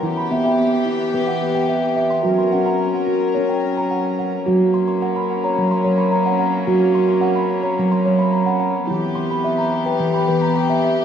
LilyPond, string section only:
\new Staff \with { instrumentName = "String section" } { \time 4/4 \tempo 4 = 108 <e b g'>1 | <fis cis' ais'>1 | <fis ais cis'>1~ | <fis ais cis'>1 |
<e b g'>1 | }